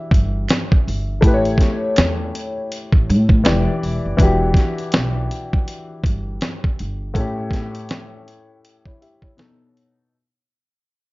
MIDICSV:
0, 0, Header, 1, 5, 480
1, 0, Start_track
1, 0, Tempo, 740741
1, 794, Time_signature, 4, 2, 24, 8
1, 7208, End_track
2, 0, Start_track
2, 0, Title_t, "Felt piano"
2, 0, Program_c, 0, 0
2, 0, Note_on_c, 0, 76, 90
2, 2205, Note_off_c, 0, 76, 0
2, 7208, End_track
3, 0, Start_track
3, 0, Title_t, "Upright piano"
3, 0, Program_c, 1, 0
3, 0, Control_c, 1, 64, 127
3, 0, Note_on_c, 1, 52, 74
3, 0, Note_on_c, 1, 62, 64
3, 0, Note_on_c, 1, 66, 72
3, 0, Note_on_c, 1, 67, 71
3, 761, Note_off_c, 1, 52, 0
3, 767, Note_off_c, 1, 62, 0
3, 775, Note_off_c, 1, 66, 0
3, 781, Note_off_c, 1, 67, 0
3, 784, Note_on_c, 1, 57, 79
3, 796, Note_on_c, 1, 64, 73
3, 803, Control_c, 1, 64, 0
3, 810, Note_on_c, 1, 67, 74
3, 823, Note_on_c, 1, 71, 74
3, 859, Note_off_c, 1, 71, 0
3, 868, Note_on_c, 1, 73, 101
3, 907, Control_c, 1, 64, 127
3, 2203, Note_off_c, 1, 57, 0
3, 2209, Note_off_c, 1, 64, 0
3, 2216, Note_off_c, 1, 67, 0
3, 2226, Note_on_c, 1, 52, 73
3, 2232, Note_on_c, 1, 64, 62
3, 2235, Note_on_c, 1, 67, 67
3, 2242, Control_c, 1, 64, 0
3, 2245, Note_on_c, 1, 74, 78
3, 2246, Note_off_c, 1, 73, 0
3, 2341, Control_c, 1, 64, 127
3, 2691, Note_off_c, 1, 52, 0
3, 2701, Note_on_c, 1, 52, 81
3, 2713, Note_off_c, 1, 64, 0
3, 2714, Note_on_c, 1, 62, 73
3, 2715, Note_off_c, 1, 67, 0
3, 2720, Note_off_c, 1, 74, 0
3, 2724, Control_c, 1, 64, 0
3, 2726, Note_on_c, 1, 66, 79
3, 2738, Note_on_c, 1, 67, 96
3, 2845, Control_c, 1, 64, 127
3, 4602, Note_off_c, 1, 52, 0
3, 4609, Note_off_c, 1, 62, 0
3, 4614, Note_off_c, 1, 66, 0
3, 4621, Note_off_c, 1, 67, 0
3, 4626, Note_on_c, 1, 45, 84
3, 4640, Note_on_c, 1, 57, 74
3, 4642, Control_c, 1, 64, 0
3, 4650, Note_on_c, 1, 61, 70
3, 4664, Note_on_c, 1, 67, 89
3, 4765, Control_c, 1, 64, 127
3, 5355, Note_off_c, 1, 67, 0
3, 5744, Note_on_c, 1, 73, 50
3, 5749, Note_on_c, 1, 64, 49
3, 5834, Note_off_c, 1, 73, 0
3, 5837, Note_off_c, 1, 64, 0
3, 5842, Note_on_c, 1, 76, 52
3, 5844, Note_on_c, 1, 67, 49
3, 5973, Note_off_c, 1, 76, 0
3, 5974, Note_off_c, 1, 67, 0
3, 5985, Note_on_c, 1, 73, 56
3, 5988, Note_on_c, 1, 64, 48
3, 6044, Note_off_c, 1, 45, 0
3, 6052, Note_off_c, 1, 57, 0
3, 6057, Note_off_c, 1, 61, 0
3, 6070, Note_on_c, 1, 47, 71
3, 6077, Note_on_c, 1, 59, 62
3, 6083, Control_c, 1, 64, 0
3, 6084, Note_on_c, 1, 63, 69
3, 6089, Note_on_c, 1, 69, 71
3, 6188, Control_c, 1, 64, 127
3, 6208, Note_off_c, 1, 73, 0
3, 6210, Note_off_c, 1, 64, 0
3, 6553, Note_off_c, 1, 47, 0
3, 6556, Note_off_c, 1, 59, 0
3, 6559, Note_off_c, 1, 63, 0
3, 6562, Note_off_c, 1, 69, 0
3, 6563, Control_c, 1, 64, 0
3, 7208, End_track
4, 0, Start_track
4, 0, Title_t, "Upright bass"
4, 0, Program_c, 2, 32
4, 78, Note_on_c, 2, 31, 96
4, 292, Note_off_c, 2, 31, 0
4, 566, Note_on_c, 2, 31, 82
4, 799, Note_off_c, 2, 31, 0
4, 799, Note_on_c, 2, 33, 89
4, 1013, Note_off_c, 2, 33, 0
4, 1284, Note_on_c, 2, 40, 86
4, 1495, Note_off_c, 2, 40, 0
4, 1900, Note_on_c, 2, 33, 77
4, 2005, Note_on_c, 2, 45, 111
4, 2015, Note_off_c, 2, 33, 0
4, 2216, Note_off_c, 2, 45, 0
4, 2246, Note_on_c, 2, 28, 107
4, 2368, Note_off_c, 2, 28, 0
4, 2483, Note_on_c, 2, 28, 76
4, 2606, Note_off_c, 2, 28, 0
4, 2626, Note_on_c, 2, 30, 76
4, 2711, Note_off_c, 2, 30, 0
4, 2717, Note_on_c, 2, 28, 82
4, 2931, Note_off_c, 2, 28, 0
4, 3209, Note_on_c, 2, 35, 85
4, 3418, Note_off_c, 2, 35, 0
4, 3916, Note_on_c, 2, 31, 89
4, 4131, Note_off_c, 2, 31, 0
4, 4408, Note_on_c, 2, 31, 82
4, 4617, Note_off_c, 2, 31, 0
4, 7208, End_track
5, 0, Start_track
5, 0, Title_t, "Drums"
5, 73, Note_on_c, 9, 36, 98
5, 92, Note_on_c, 9, 42, 55
5, 138, Note_off_c, 9, 36, 0
5, 157, Note_off_c, 9, 42, 0
5, 314, Note_on_c, 9, 26, 66
5, 320, Note_on_c, 9, 42, 78
5, 327, Note_on_c, 9, 38, 102
5, 379, Note_off_c, 9, 26, 0
5, 385, Note_off_c, 9, 42, 0
5, 392, Note_off_c, 9, 38, 0
5, 465, Note_on_c, 9, 36, 85
5, 530, Note_off_c, 9, 36, 0
5, 572, Note_on_c, 9, 46, 48
5, 636, Note_off_c, 9, 46, 0
5, 793, Note_on_c, 9, 36, 118
5, 803, Note_on_c, 9, 42, 84
5, 858, Note_off_c, 9, 36, 0
5, 868, Note_off_c, 9, 42, 0
5, 942, Note_on_c, 9, 42, 45
5, 1007, Note_off_c, 9, 42, 0
5, 1022, Note_on_c, 9, 36, 73
5, 1041, Note_on_c, 9, 42, 52
5, 1045, Note_on_c, 9, 38, 34
5, 1087, Note_off_c, 9, 36, 0
5, 1106, Note_off_c, 9, 42, 0
5, 1110, Note_off_c, 9, 38, 0
5, 1272, Note_on_c, 9, 42, 81
5, 1274, Note_on_c, 9, 26, 59
5, 1284, Note_on_c, 9, 38, 124
5, 1337, Note_off_c, 9, 42, 0
5, 1338, Note_off_c, 9, 26, 0
5, 1349, Note_off_c, 9, 38, 0
5, 1524, Note_on_c, 9, 42, 63
5, 1588, Note_off_c, 9, 42, 0
5, 1761, Note_on_c, 9, 42, 79
5, 1826, Note_off_c, 9, 42, 0
5, 1895, Note_on_c, 9, 36, 82
5, 1960, Note_off_c, 9, 36, 0
5, 2010, Note_on_c, 9, 42, 59
5, 2075, Note_off_c, 9, 42, 0
5, 2133, Note_on_c, 9, 36, 98
5, 2197, Note_off_c, 9, 36, 0
5, 2235, Note_on_c, 9, 42, 72
5, 2236, Note_on_c, 9, 26, 70
5, 2242, Note_on_c, 9, 38, 94
5, 2300, Note_off_c, 9, 42, 0
5, 2301, Note_off_c, 9, 26, 0
5, 2307, Note_off_c, 9, 38, 0
5, 2484, Note_on_c, 9, 46, 49
5, 2549, Note_off_c, 9, 46, 0
5, 2712, Note_on_c, 9, 36, 108
5, 2719, Note_on_c, 9, 42, 82
5, 2777, Note_off_c, 9, 36, 0
5, 2784, Note_off_c, 9, 42, 0
5, 2943, Note_on_c, 9, 36, 83
5, 2959, Note_on_c, 9, 42, 53
5, 2963, Note_on_c, 9, 38, 34
5, 3007, Note_off_c, 9, 36, 0
5, 3023, Note_off_c, 9, 42, 0
5, 3028, Note_off_c, 9, 38, 0
5, 3100, Note_on_c, 9, 42, 48
5, 3165, Note_off_c, 9, 42, 0
5, 3187, Note_on_c, 9, 42, 79
5, 3200, Note_on_c, 9, 38, 117
5, 3252, Note_off_c, 9, 42, 0
5, 3265, Note_off_c, 9, 38, 0
5, 3442, Note_on_c, 9, 42, 68
5, 3507, Note_off_c, 9, 42, 0
5, 3585, Note_on_c, 9, 36, 86
5, 3650, Note_off_c, 9, 36, 0
5, 3679, Note_on_c, 9, 42, 74
5, 3744, Note_off_c, 9, 42, 0
5, 3911, Note_on_c, 9, 36, 89
5, 3926, Note_on_c, 9, 42, 56
5, 3976, Note_off_c, 9, 36, 0
5, 3991, Note_off_c, 9, 42, 0
5, 4153, Note_on_c, 9, 42, 71
5, 4161, Note_on_c, 9, 38, 92
5, 4218, Note_off_c, 9, 42, 0
5, 4225, Note_off_c, 9, 38, 0
5, 4303, Note_on_c, 9, 36, 83
5, 4368, Note_off_c, 9, 36, 0
5, 4402, Note_on_c, 9, 42, 59
5, 4466, Note_off_c, 9, 42, 0
5, 4633, Note_on_c, 9, 36, 101
5, 4638, Note_on_c, 9, 42, 73
5, 4698, Note_off_c, 9, 36, 0
5, 4703, Note_off_c, 9, 42, 0
5, 4864, Note_on_c, 9, 36, 71
5, 4882, Note_on_c, 9, 42, 51
5, 4886, Note_on_c, 9, 38, 31
5, 4929, Note_off_c, 9, 36, 0
5, 4946, Note_off_c, 9, 42, 0
5, 4951, Note_off_c, 9, 38, 0
5, 5020, Note_on_c, 9, 42, 45
5, 5085, Note_off_c, 9, 42, 0
5, 5112, Note_on_c, 9, 42, 78
5, 5124, Note_on_c, 9, 38, 112
5, 5177, Note_off_c, 9, 42, 0
5, 5189, Note_off_c, 9, 38, 0
5, 5365, Note_on_c, 9, 42, 59
5, 5429, Note_off_c, 9, 42, 0
5, 5603, Note_on_c, 9, 42, 79
5, 5668, Note_off_c, 9, 42, 0
5, 5738, Note_on_c, 9, 36, 79
5, 5803, Note_off_c, 9, 36, 0
5, 5847, Note_on_c, 9, 42, 54
5, 5911, Note_off_c, 9, 42, 0
5, 5976, Note_on_c, 9, 36, 80
5, 6040, Note_off_c, 9, 36, 0
5, 6079, Note_on_c, 9, 42, 71
5, 6086, Note_on_c, 9, 38, 82
5, 6144, Note_off_c, 9, 42, 0
5, 6151, Note_off_c, 9, 38, 0
5, 6331, Note_on_c, 9, 42, 65
5, 6396, Note_off_c, 9, 42, 0
5, 7208, End_track
0, 0, End_of_file